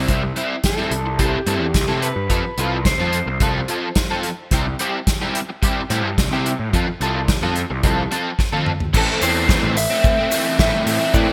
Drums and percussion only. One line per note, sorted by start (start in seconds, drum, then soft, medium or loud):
0.08 kick medium
0.08 closed hi-hat medium
0.36 closed hi-hat medium
0.64 kick medium
0.64 snare medium
0.64 closed hi-hat medium
0.91 closed hi-hat soft
1.19 kick medium
1.19 closed hi-hat medium
1.47 closed hi-hat medium
1.74 kick medium
1.74 snare medium
1.74 closed hi-hat medium
2.02 closed hi-hat soft
2.30 kick medium
2.30 closed hi-hat medium
2.58 closed hi-hat medium
2.85 kick medium
2.85 snare medium
2.85 closed hi-hat medium
3.13 closed hi-hat medium
3.40 kick medium
3.40 closed hi-hat medium
3.68 closed hi-hat soft
3.95 kick medium
3.95 snare loud
3.95 closed hi-hat medium
4.23 closed hi-hat soft
4.51 kick medium
4.51 closed hi-hat medium
4.79 closed hi-hat medium
5.07 kick loud
5.07 snare medium
5.07 closed hi-hat medium
5.35 closed hi-hat medium
5.63 kick loud
5.63 closed hi-hat medium
5.90 closed hi-hat medium
6.18 kick loud
6.18 snare medium
6.18 closed hi-hat medium
6.46 closed hi-hat medium
6.73 kick medium
6.73 closed hi-hat medium
7.01 closed hi-hat medium
7.28 kick loud
7.28 snare loud
7.28 closed hi-hat medium
7.56 closed hi-hat soft
7.83 kick loud
7.83 closed hi-hat medium
8.12 closed hi-hat soft
8.39 kick medium
8.39 snare soft
8.52 high tom soft
8.66 mid tom medium
8.80 floor tom medium
8.94 kick loud
8.94 crash loud
8.94 shaker medium
9.22 open hi-hat medium
9.22 shaker loud
9.49 kick loud
9.49 snare loud
9.49 shaker medium
9.77 open hi-hat medium
9.77 shaker medium
10.04 kick loud
10.04 shaker medium
10.31 open hi-hat medium
10.31 shaker loud
10.59 kick loud
10.59 snare loud
10.59 shaker medium
10.87 open hi-hat medium
10.87 shaker medium
11.01 shaker soft
11.14 kick medium
11.14 shaker medium